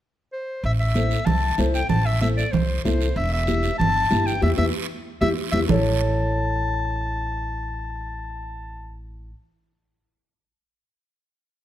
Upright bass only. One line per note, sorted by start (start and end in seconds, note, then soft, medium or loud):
0.64 1.14 A1 loud
1.26 1.52 C2 medium
1.58 1.83 C2 medium
1.89 2.40 A1 medium
2.53 2.78 C2 medium
2.85 3.10 C2 medium
3.16 3.67 E1 loud
3.80 4.05 G1 medium
4.11 4.36 G1 medium
4.42 4.54 E2 loud
4.58 4.70 E2 loud
5.21 5.33 E2 medium
5.52 5.65 E2 medium
5.69 9.32 A1 loud